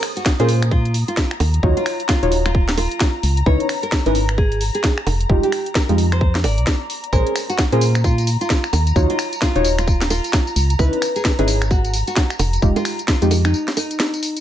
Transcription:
Already playing: A#5
0.03 finger snap, open hi-hat
0.17 F#4, closed hi-hat
0.26 kick, snare
0.40 A#2 C#4 F4 G#4 A#4 C5, closed hi-hat
0.49 open hi-hat
0.62 finger snap, closed hi-hat
0.71 F4, kick
0.85 closed hi-hat
0.94 open hi-hat
1.08 F4, closed hi-hat
1.17 kick, snare
1.31 finger snap
1.40 D#2, open hi-hat, high bongo
1.54 closed hi-hat
1.63 D#2 D#4 F4 F#4 C#5, kick
1.77 F4, closed hi-hat
1.86 finger snap, open hi-hat
2.00 closed hi-hat
2.09 F4, kick, snare
2.23 D#1 D#4 F4 F#4 C#5, closed hi-hat
2.32 open hi-hat
2.46 F4, finger snap, closed hi-hat
2.55 kick
2.69 snare, closed hi-hat
2.78 F4, open hi-hat, high bongo
2.91 closed hi-hat
3.00 kick, snare
3.23 C#2, open hi-hat
3.37 closed hi-hat
3.46 C#2 C#4 D#4 E4 B4 C#5, kick
3.60 closed hi-hat
3.69 finger snap, open hi-hat
3.83 A#4, closed hi-hat
3.92 kick, snare
4.06 G#1 C#4 D#4 E4 A#4 B4, closed hi-hat
4.15 open hi-hat
4.29 finger snap, closed hi-hat
4.38 G#4, kick
4.52 closed hi-hat
4.61 open hi-hat
4.75 G#4, closed hi-hat
4.84 kick, snare
4.98 finger snap
5.07 F1, open hi-hat, high bongo
5.21 closed hi-hat
5.30 F1 G#3 D#4 F4 G4, kick
5.43 G4, closed hi-hat
5.52 finger snap, open hi-hat
5.66 closed hi-hat
5.75 A#4, kick, snare
5.89 F2 G#3 D#4 F4 G4, closed hi-hat
5.98 open hi-hat
6.12 C5, finger snap, closed hi-hat
6.21 kick
6.35 snare, closed hi-hat
6.44 G#1 D5, open hi-hat, high bongo
6.58 C2, closed hi-hat
6.67 kick, snare
6.90 open hi-hat
7.04 closed hi-hat
7.13 A#1 C#4 G#4 A#4 C5 A#5, kick, tambourine
7.27 closed hi-hat
7.36 finger snap, open hi-hat, tambourine
7.50 F#4, closed hi-hat, tambourine
7.58 kick, snare, tambourine
7.72 A#2 C#4 F4 G#4 A#4 C5, closed hi-hat
7.81 open hi-hat, tambourine
7.95 finger snap, closed hi-hat, tambourine
8.04 F4, kick, tambourine
8.18 closed hi-hat, tambourine
8.27 open hi-hat, tambourine
8.41 F4, closed hi-hat, tambourine
8.50 kick, snare, tambourine
8.64 finger snap, tambourine
8.73 D#2, open hi-hat, tambourine, high bongo
8.87 closed hi-hat, tambourine
8.96 D#2 D#4 F4 F#4 C#5, kick, tambourine
9.10 F4, closed hi-hat
9.19 finger snap, open hi-hat, tambourine
9.33 closed hi-hat, tambourine
9.42 F4, kick, snare, tambourine
9.56 D#1 D#4 F4 F#4 C#5, closed hi-hat
9.65 open hi-hat, tambourine
9.79 F4, finger snap, closed hi-hat, tambourine
9.87 kick, tambourine
10.01 snare, closed hi-hat, tambourine
10.10 F4, open hi-hat, tambourine, high bongo
10.24 closed hi-hat, tambourine
10.33 kick, snare, tambourine
10.47 tambourine
10.56 C#2, open hi-hat, tambourine
10.70 closed hi-hat, tambourine
10.79 C#2 C#4 D#4 E4 B4, kick, tambourine
10.93 closed hi-hat
11.02 finger snap, open hi-hat, tambourine
11.16 G#4, closed hi-hat, tambourine
11.25 kick, snare, tambourine
11.39 G#1 C#4 D#4 E4 G#4 B4, closed hi-hat
11.48 open hi-hat, tambourine
11.62 finger snap, closed hi-hat, tambourine
11.71 F#4, kick, tambourine
11.85 closed hi-hat, tambourine
11.94 open hi-hat, tambourine
12.07 F#4, closed hi-hat, tambourine
12.16 kick, snare, tambourine
12.30 finger snap, tambourine
12.39 F1, open hi-hat, tambourine, high bongo
12.53 closed hi-hat, tambourine
12.62 F1 G#3 D#4 F4 G4, kick, tambourine
12.76 F4, closed hi-hat, tambourine, high bongo
12.85 finger snap, open hi-hat, tambourine
12.99 closed hi-hat, tambourine
13.08 F4, kick, snare, tambourine
13.22 F2 G#3 D#4 F4 G4, closed hi-hat, tambourine
13.31 open hi-hat, tambourine, high bongo
13.45 D#4, finger snap, closed hi-hat, tambourine
13.54 tambourine
13.68 snare, closed hi-hat, tambourine
13.77 D#4, open hi-hat, tambourine, high bongo
13.91 closed hi-hat, tambourine
14.00 snare, tambourine
14.14 closed hi-hat, tambourine
14.23 open hi-hat, tambourine
14.37 closed hi-hat, tambourine

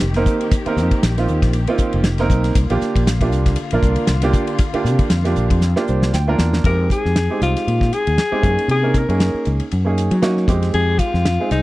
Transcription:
Already playing: D#3 A#3 G4
0.02 F1
0.14 A#3 C4 D#4 A#4, snare, ride
0.26 kick, hi-hat pedal
0.41 ride
0.51 kick, hi-hat pedal, ride
0.66 A#3 C4 D#4 A#4, muted fretless electric bass stroke, ride
0.76 F2, snare, hi-hat pedal
0.91 kick, ride
1.03 A#1, snare, hi-hat pedal, ride
1.18 A#3 C4 D#4 F4, snare, ride
1.28 D#2, hi-hat pedal
1.42 A#1, kick, snare, ride
1.53 hi-hat pedal, ride
1.67 A#3 C4 D#4 F4, ride
1.78 muted fretless electric bass stroke, kick, hi-hat pedal
1.93 F1, ride
2.04 snare, hi-hat pedal, ride
2.18 A#3 C4 D#4 A#4, snare, ride
2.30 B1, kick, hi-hat pedal
2.44 snare, ride
2.55 C2 D3 F4, kick, hi-hat pedal, ride
2.70 A#1 A#3 D4 F4 G4, ride
2.81 muted fretless electric bass stroke, snare, hi-hat pedal
2.96 A#1, kick, ride
3.07 snare, hi-hat pedal, ride
3.21 A#3 D4 F4 G4, kick, ride
3.32 C2, hi-hat pedal
3.46 kick, snare, ride
3.56 hi-hat pedal, ride
3.71 A#1 A#3 D4 F4 A#4, ride
3.83 C2, kick, hi-hat pedal
3.96 ride
4.07 C2, snare, hi-hat pedal, ride
4.22 A#3 D4 F4 G4, snare, ride
4.33 kick, hi-hat pedal
4.47 ride
4.58 kick, hi-hat pedal, ride
4.73 A#3 D4 F4 G4, muted fretless electric bass stroke, ride
4.85 C3, snare, hi-hat pedal
4.99 kick, ride
5.10 F2, snare, hi-hat pedal, ride
5.24 A#3 D4 F4 G4, snare, ride
5.36 A#1, hi-hat pedal
5.50 F2, kick, ride
5.61 snare, hi-hat pedal
5.76 A#3 D4 F4 G4, snare
5.87 C2 C5, hi-hat pedal
6.02 snare
6.13 D2 G5, snare, hi-hat pedal
6.28 A#3 D4 F4 A#4
6.39 E2, snare, hi-hat pedal
6.53 snare
6.64 F2 G#3 C4 D#4 G4 A#4, kick, ride
6.90 G#4, kick, hi-hat pedal, ride
7.05 F2, snare
7.16 snare, ride
7.30 G#3 C4 D#4 G4
7.41 C2 F4, snare, hi-hat pedal, ride
7.57 snare, ride
7.67 A#2, ride
7.81 kick, snare
7.93 G#4, hi-hat pedal, ride
8.07 D#2, ride
8.18 snare, ride
8.32 G#3 C4 D#4 G4, muted fretless electric bass stroke
8.42 F#2 A#3 C#4 D#4 G#4, kick, hi-hat pedal, ride
8.59 ride
8.68 C3 G#4, ride
8.83 A#3 C#4 D#4 A#4
8.94 A#4, kick, hi-hat pedal, ride
9.09 F#2 A#3 C#4 D#4 G#4, ride
9.20 snare, ride
9.34 muted fretless electric bass stroke
9.45 C#2, hi-hat pedal, ride
9.60 ride
9.71 F#2, ride
9.85 A#3 C#4 D#4 G#4
9.98 hi-hat pedal, ride
10.11 F#3, ride
10.22 A#3 C#4 D#4 F#4, snare, ride
10.37 snare
10.48 F2 G#3 C4 D#4 G4, kick, hi-hat pedal, ride
10.63 snare, ride
10.74 F2 G#4, ride
10.99 F4, kick, hi-hat pedal, ride
11.14 F2, snare
11.25 snare, ride
11.40 G#3 C4 D#4 G#4
11.51 C2 D#4, snare, hi-hat pedal, ride

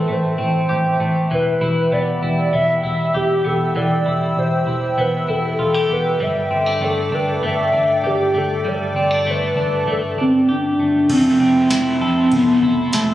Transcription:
Already playing: E3 C4 G4 A4 E5 A5
0.08 A1 A3
0.12 C5
0.38 A1 C4
0.69 A1 G4
1.00 A1 A3
1.30 E1 E3 G4 B4 G5 E6
1.61 E1 E4
1.92 E1 B3 D5
2.22 E1 E4
2.53 E1 B3 E5
2.83 E1 E4 E5
3.14 E1 G4
3.45 E1 B3 A4
3.76 E1 E3 D5
4.06 E1 E4
4.37 E1 C5
4.67 E1 E4
4.98 E1 B3 B4
5.28 E1 E4 A4
5.59 E1 F4 A4
5.74 G4
5.89 E1 B3 B4
6.20 G1 G3 A4 D5 E5 D6
6.51 G1 C4
6.66 D4
6.80 G1 A3 A4
7.11 G1 D4 B4
7.42 G1 A3 E5
7.73 G1 D4
8.03 G1 G4
8.34 G1 A3 A4
8.64 G1 G3 D5 A5
8.95 G1 C4
9.11 D4
9.26 G1 A3
9.31 B4
9.56 G1 D4
9.86 G1 A3
9.92 A4
10.17 G1 D4
10.21 C4
10.48 G1 D4 G4
10.78 G1 A3
11.09 F1 F3 A3 C4 E4 A4 E5 A5 C6, kick, crash, ride
11.39 F1 C4 E4
11.44 A3
11.70 F1 F3 A3 C4 E4, snare, ride, tambourine
11.75 E4
12.00 F2 C4 E4 A4
12.06 A3
12.32 F1 F3 A3 B3 E4, kick, ride
12.62 F1 E4, kick
12.67 A3
12.91 F1 F3 A3 A4, snare, ride, tambourine
12.96 C4 E4

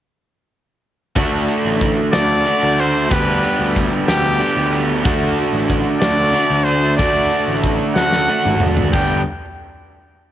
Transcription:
1.16 D2 D3 A3 D4 F#4, kick, closed hi-hat
1.48 closed hi-hat
1.65 A1
1.81 kick, closed hi-hat
2.13 D2 D3 A3 D4 F#4 D5, snare, closed hi-hat
2.45 D3 A3 D4 F#4, closed hi-hat
2.63 D2
2.78 C5, closed hi-hat
3.11 D2 D3 G3 B3 G4 B4, kick, closed hi-hat
3.44 closed hi-hat
3.59 D2
3.76 kick, closed hi-hat
4.08 D2 D3 G3 B3 G4, snare, closed hi-hat
4.39 D3 G3 B3 G4, closed hi-hat
4.57 D2
4.73 closed hi-hat
5.05 D2 D3 A3 D4 F#4 D5, kick, closed hi-hat
5.38 closed hi-hat
5.53 A1
5.70 kick, closed hi-hat
6.00 D2 D4 F#4 D5, snare, closed hi-hat
6.05 D3 A3
6.33 D3 A3 D4 F#4, closed hi-hat
6.50 D2
6.64 C5, closed hi-hat
6.97 D2 D3 A3 D4 D5 E5, kick, closed hi-hat
7.02 F#4
7.31 closed hi-hat
7.48 A1
7.63 kick, closed hi-hat
7.95 D2 D4 F#4 F#5, snare
7.99 D3 A3
8.12 snare
8.28 D3 A3 D4 F#4
8.45 G#1, mid tom
8.60 mid tom
8.77 floor tom
8.92 G1 G2 D3 G3 A3 B3 D4 G4 B4 G5, kick, crash

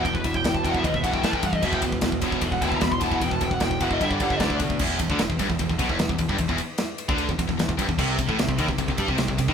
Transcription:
0.03 E1 E2 B2 G5, kick, ride
0.07 E3
0.14 B4, kick
0.24 E1 E2 B2 E5, kick, ride
0.34 G5, kick
0.44 E1 E2 B2 G5, kick, snare, ride
0.55 A5, kick
0.64 E1 E2 B2 E3 G5, kick, ride
0.71 F#5, kick
0.76 E5
0.83 D#2 E2 B2 E3 D#5, kick, ride
0.94 E5, kick
1.03 B1 E2 B2 E3 F#5, kick, ride
1.14 G5, kick
1.23 A1 A2 E3 A3 A5, kick, snare, ride
1.33 G5, kick
1.43 G2 A2 E3 F#5, kick, ride
1.53 D#5, kick
1.62 E1 E2 B2 E3 E5, kick, crash
1.72 G5, kick
1.82 E1 E2 B2, kick, ride
1.92 kick
2.01 E1 E2 B2, kick, snare, ride
2.12 kick
2.22 E1 E2 B2 E3, kick, ride
2.32 kick
2.41 E1 E2 B2 E3, kick, ride
2.52 F#5, kick
2.62 D#2 E2 B2 E3 G5, kick, ride
2.68 A5, kick
2.75 A#5
2.81 E1 E2 B2 B5, kick, snare, ride
2.91 C6, kick
3.01 E1 E2 B2 E3 A5, kick, ride
3.12 F#5, kick
3.21 E1 E2 B2 E3 G5, kick, ride
3.31 A5, kick
3.41 E1 E2 B2 G5, kick, ride
3.51 F#5, kick
3.60 E1 E2 B2 G5, kick, snare, ride
3.71 kick
3.81 F#1 E2 B2 E3 F#5, kick, ride
3.91 D#5, kick
4.01 G1 G2 D3 G3 E5, kick, ride
4.11 D5, kick
4.20 G1 G2 D3 G3 F#5, kick, ride
4.30 E5, kick
4.38 D2 D3 A3 D4 D5, kick, snare, ride
4.50 kick
4.59 B2 D3 A3, kick, ride
4.70 kick
4.79 E1 E2, kick, crash
4.99 E1 E2, kick, ride
5.10 D2 D3, kick
5.19 E1 E2, snare, ride
5.30 E1 E2, kick
5.39 G1 G2, kick, ride
5.50 E1 E2, kick
5.59 E1 E2, kick, ride
5.69 E1 E2, kick
5.79 B1 B2, kick, ride
5.88 E1 E2, kick
5.99 E1 E2, snare, ride
6.09 E1 E2, kick
6.18 E1 E2, kick, ride
6.29 G1 G2, kick
6.38 E1 E2, kick, ride
6.49 E1 E2, kick
6.58 ride
6.78 snare, ride
6.98 ride
7.09 D2 D3, kick
7.18 ride
7.29 E1 E2, kick
7.39 E1 E2, kick, ride
7.48 E1 E2, kick
7.58 E1 E2, snare, ride
7.68 E1 E2, kick
7.77 G1 G2, kick, ride
7.88 E1 E2, kick
7.99 C2 C3, kick, crash
8.18 C2 C3, kick, ride
8.29 A1 A2, kick
8.39 C2 C3, snare, ride
8.48 C2 C3, kick
8.58 D#2 D#3, kick, ride
8.68 C2 C3, kick
8.78 C2 C3, kick, ride
8.88 C2 C3, kick
8.98 G2 G3, kick, ride
9.08 C2 C3, kick
9.18 C2 C3, snare, ride
9.28 C2 C3, kick
9.38 C2 C3, kick, ride
9.48 D#2 D#3, kick

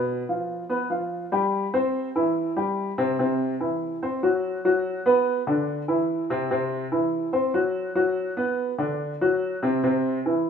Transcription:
Already playing: B2 B3
0.29 F3 F4
0.69 B3 B4
0.90 F3 F4
1.32 G3 G4
1.74 C4 C5
2.16 E3 E4
2.57 G3 G4
2.98 C3 C4
3.19 C3 C4
3.60 E3 E4
4.03 C4 C5
4.23 F#3 F#4
4.65 F#3 F#4
5.06 B3 B4
5.47 D3 D4
5.88 E3 E4
6.30 C3 C4
6.51 C3 C4
6.92 E3 E4
7.33 C4 C5
7.54 F#3 F#4
7.95 F#3 F#4
8.37 B3 B4
8.79 D3 D4
9.21 F#3 F#4
9.63 C3 C4
9.84 C3 C4
10.26 E3 E4

